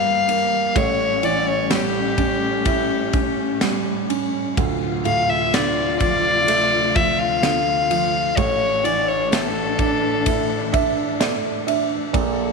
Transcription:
0.00 0.72 G1 medium
0.00 0.72 G2 medium
0.00 0.73 G2 medium
0.00 0.72 E3 medium
0.00 0.73 G3 medium
0.00 0.28 A#3 medium
0.00 0.73 A#3 loud
0.00 0.71 G4 medium
0.00 0.78 F5 loud
0.28 0.74 A#3 medium
0.28 ride medium
0.75 4.53 A1 medium
0.75 4.53 A2 medium
0.75 4.54 A2 medium
0.75 2.64 G3 medium
0.75 4.54 C#4 medium
0.75 1.26 C#5 loud
0.75 kick loud
0.75 ride medium
1.23 3.09 E3 medium
1.23 1.50 D5 medium
1.23 ride medium
1.48 1.74 C#5 medium
1.70 3.57 G3 medium
1.70 3.62 G4 medium
1.70 snare loud
1.70 ride medium
1.70 tambourine medium
2.18 3.12 C#4 medium
2.18 kick medium
2.18 ride medium
2.65 4.56 A3 medium
2.65 4.54 E4 medium
2.65 kick medium
2.65 ride medium
3.13 4.08 C#4 soft
3.13 kick loud
3.13 ride medium
3.61 4.55 G3 medium
3.61 snare loud
3.61 ride medium
3.61 tambourine medium
4.09 4.56 C#4 soft
4.09 ride medium
4.57 8.33 D1 medium
4.57 8.33 D2 medium
4.57 8.34 D2 medium
4.57 8.34 C3 medium
4.57 8.34 F4 medium
4.57 kick loud
4.57 ride medium
5.05 6.92 A2 medium
5.05 5.31 F5 medium
5.05 ride medium
5.30 5.55 E5 medium
5.53 7.39 D3 medium
5.53 6.00 D5 medium
5.53 snare loud
5.53 ride medium
5.53 tambourine medium
6.00 6.94 F3 soft
6.00 6.97 D5 loud
6.00 kick medium
6.00 ride medium
6.48 8.33 A3 medium
6.48 ride medium
6.95 7.89 F3 medium
6.95 7.21 E5 medium
6.95 kick loud
6.95 ride medium
7.19 8.39 F5 loud
7.42 8.34 D3 medium
7.42 snare loud
7.42 ride medium
7.42 tambourine medium
7.90 8.36 F3 medium
7.90 ride medium
8.37 12.10 A1 medium
8.37 12.10 A2 medium
8.37 12.11 E3 medium
8.37 12.11 D4 medium
8.37 8.86 C#5 loud
8.37 kick loud
8.37 ride medium
8.84 10.69 E3 medium
8.84 9.10 D5 medium
8.84 ride medium
9.09 9.34 C#5 medium
9.31 11.16 A3 medium
9.31 11.21 A4 medium
9.31 snare loud
9.31 ride medium
9.31 tambourine medium
9.79 10.71 D4 medium
9.79 kick medium
9.79 ride medium
10.26 12.10 E4 medium
10.26 kick medium
10.26 ride medium
10.72 11.65 D4 medium
10.72 11.17 E5 medium
10.72 kick loud
10.72 ride medium
11.20 12.11 A3 medium
11.20 11.64 D5 medium
11.20 snare loud
11.20 ride medium
11.20 tambourine medium
11.67 12.13 D4 soft
11.67 12.11 E5 medium
11.67 ride medium
12.13 12.52 A#1 medium
12.13 12.52 A#2 medium
12.13 12.52 F3 medium
12.13 12.52 A4 medium
12.13 kick loud
12.13 ride medium

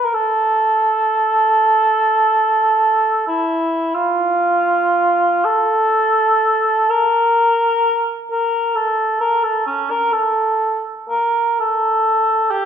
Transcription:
0.05 0.15 A#4 medium
0.14 3.27 A4 medium
3.27 3.96 E4 medium
3.95 5.46 F4 medium
5.45 6.91 A4 medium
6.90 8.14 A#4 medium
8.31 8.77 A#4 medium
8.76 9.20 A4 medium
9.21 9.45 A#4 medium
9.43 9.66 A4 medium
9.66 9.92 C#4 medium
9.90 10.14 A#4 medium
10.12 10.81 A4 medium
11.09 11.55 A#4 medium
11.60 12.52 A4 medium
12.50 12.65 G4 medium

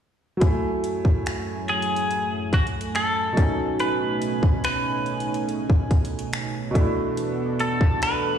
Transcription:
0.37 3.31 F#3 medium
0.37 3.33 E4 medium
0.41 3.34 F#2 medium
0.41 3.34 F#3 medium
0.41 6.71 A3 medium
0.41 3.34 E4 medium
0.41 3.34 G#5 medium
0.41 kick loud
0.41 closed hi-hat medium
0.46 3.35 A3 medium
0.84 closed hi-hat medium
1.05 kick medium
1.26 finger snap loud
1.26 closed hi-hat medium
1.68 2.49 G#4 medium
1.68 closed hi-hat soft
1.82 closed hi-hat medium
1.96 closed hi-hat medium
2.11 closed hi-hat medium
2.53 2.65 F#4 medium
2.53 kick medium
2.53 closed hi-hat soft
2.67 closed hi-hat medium
2.81 closed hi-hat medium
2.95 3.80 A4 medium
2.95 finger snap loud
2.95 closed hi-hat medium
3.33 6.69 B2 medium
3.33 6.70 F#3 medium
3.33 6.71 A3 medium
3.37 8.38 B2 medium
3.37 6.72 C#4 medium
3.37 6.72 D#4 medium
3.37 6.73 D#4 medium
3.37 6.72 G#5 loud
3.37 kick loud
3.37 closed hi-hat medium
3.42 6.74 G#5 medium
3.79 4.64 B4 loud
3.79 closed hi-hat medium
4.22 closed hi-hat medium
4.43 kick medium
4.64 5.45 B4 medium
4.64 finger snap loud
4.64 closed hi-hat medium
5.06 closed hi-hat soft
5.20 closed hi-hat medium
5.34 closed hi-hat medium
5.49 closed hi-hat medium
5.70 kick medium
5.91 kick medium
5.91 closed hi-hat soft
6.05 closed hi-hat medium
6.19 closed hi-hat medium
6.33 finger snap loud
6.33 closed hi-hat medium
6.71 8.38 B2 medium
6.71 8.38 E3 medium
6.71 8.38 A3 medium
6.71 8.38 F#4 medium
6.71 8.38 A4 medium
6.75 8.38 B3 medium
6.75 8.38 D4 medium
6.75 kick loud
6.75 closed hi-hat medium
6.80 8.38 E4 medium
7.17 closed hi-hat medium
7.60 7.99 A4 medium
7.60 closed hi-hat medium
7.81 kick medium
8.02 8.38 B4 medium
8.02 finger snap loud
8.02 closed hi-hat medium

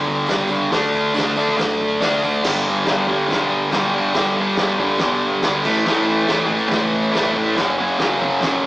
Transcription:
0.00 0.23 D2 loud
0.00 0.27 G2 loud
0.00 0.28 D3 loud
0.00 0.29 G3 loud
0.07 kick medium
0.07 tambourine soft
0.27 0.49 G2 medium
0.27 0.49 D3 medium
0.27 0.50 G3 loud
0.27 snare loud
0.27 open hi-hat medium
0.27 tambourine loud
0.31 0.67 C#2 medium
0.48 0.71 G2 medium
0.48 0.71 D3 loud
0.48 0.71 G3 loud
0.48 tambourine medium
0.72 1.09 D2 loud
0.72 1.13 D3 loud
0.72 1.14 A3 loud
0.72 1.14 D4 loud
0.72 kick loud
0.72 snare loud
0.72 open hi-hat medium
0.92 kick medium
0.92 tambourine medium
1.14 1.52 D2 medium
1.14 1.36 D3 medium
1.14 1.36 A3 medium
1.14 1.37 D4 medium
1.14 snare loud
1.14 open hi-hat medium
1.14 tambourine loud
1.36 1.56 D3 medium
1.36 1.56 A3 medium
1.36 1.58 D4 loud
1.36 tambourine medium
1.49 kick medium
1.57 1.96 F#2 medium
1.57 2.00 D3 loud
1.57 2.00 A3 loud
1.57 2.02 D4 loud
1.57 kick loud
1.57 snare loud
1.57 open hi-hat medium
1.57 tambourine medium
1.81 kick medium
1.81 tambourine soft
2.01 2.20 D2 medium
2.01 2.22 D3 medium
2.01 2.22 A3 medium
2.01 2.24 D4 medium
2.01 snare loud
2.01 open hi-hat medium
2.01 tambourine loud
2.23 2.41 G#1 medium
2.23 2.43 D3 medium
2.23 2.43 A3 medium
2.23 2.44 D4 loud
2.23 tambourine medium
2.43 2.72 G1 medium
2.43 2.85 G2 loud
2.43 2.69 D3 loud
2.43 kick loud
2.43 snare loud
2.43 crash loud
2.43 crash medium
2.47 2.66 G3 loud
2.66 2.87 D3 medium
2.66 2.90 G3 medium
2.86 3.14 G1 medium
2.86 3.28 G2 medium
2.86 3.10 D3 medium
2.86 snare loud
2.86 crash medium
2.90 3.06 G3 medium
3.08 3.30 D3 medium
3.08 3.32 G3 medium
3.08 kick medium
3.29 3.58 B1 medium
3.29 3.70 G2 loud
3.29 3.72 D3 loud
3.29 kick loud
3.29 snare loud
3.29 crash medium
3.33 3.75 G3 loud
3.71 4.01 B1 medium
3.71 4.13 G2 medium
3.71 3.98 D3 medium
3.71 snare loud
3.71 crash medium
3.76 3.93 G3 medium
3.95 4.17 G3 medium
3.99 4.16 D3 medium
4.14 4.43 G1 loud
4.14 4.56 G2 loud
4.14 4.39 D3 loud
4.14 4.35 G3 loud
4.14 kick loud
4.14 snare loud
4.14 crash medium
4.36 4.61 G3 medium
4.41 4.58 D3 medium
4.57 4.86 D2 loud
4.57 4.97 G2 medium
4.57 4.82 D3 medium
4.57 snare loud
4.57 crash medium
4.62 4.78 G3 medium
4.79 5.01 G3 medium
4.79 kick medium
4.83 5.00 D3 medium
4.99 5.29 B1 medium
4.99 5.41 G2 medium
4.99 5.43 D3 loud
4.99 5.45 G3 loud
4.99 kick loud
4.99 snare loud
4.99 crash medium
5.42 5.59 D2 medium
5.42 5.64 G2 medium
5.42 5.65 D3 medium
5.42 snare loud
5.42 crash medium
5.46 5.66 G3 medium
5.63 5.80 A1 medium
5.63 5.86 E3 medium
5.63 5.88 A3 loud
5.63 kick loud
5.63 crash loud
5.68 5.84 A2 medium
5.85 6.15 A1 loud
5.85 6.26 A2 medium
5.85 6.09 E3 loud
5.85 6.06 A3 loud
5.85 snare loud
5.85 crash medium
6.06 6.31 A3 medium
6.11 6.29 E3 medium
6.27 6.57 A1 medium
6.27 6.67 A2 medium
6.27 6.49 E3 medium
6.27 snare loud
6.27 crash medium
6.31 6.46 A3 medium
6.46 6.72 A3 medium
6.50 6.70 E3 medium
6.50 kick medium
6.68 7.00 C#2 medium
6.68 7.11 A2 loud
6.68 7.13 E3 loud
6.68 kick loud
6.68 snare loud
6.68 crash medium
6.73 7.15 A3 loud
7.12 7.43 F1 loud
7.12 7.56 A2 medium
7.12 7.37 E3 medium
7.12 snare loud
7.12 crash medium
7.16 7.33 A3 medium
7.34 7.56 A3 medium
7.38 7.58 E3 medium
7.55 7.86 F#1 medium
7.55 7.98 F#2 medium
7.55 7.80 C#3 loud
7.55 kick loud
7.55 snare loud
7.55 crash medium
7.60 7.76 F#3 loud
7.78 8.00 C#3 medium
7.78 8.02 F#3 medium
7.99 8.28 C#2 medium
7.99 8.39 F#2 medium
7.99 8.22 C#3 medium
7.99 snare loud
7.99 crash medium
8.03 8.18 F#3 medium
8.19 8.43 F#3 medium
8.19 kick medium
8.23 8.42 C#3 medium
8.40 8.66 A1 medium
8.40 8.66 F#2 medium
8.40 8.66 C#3 loud
8.40 8.66 F#3 loud
8.40 kick loud
8.40 snare loud
8.40 crash medium

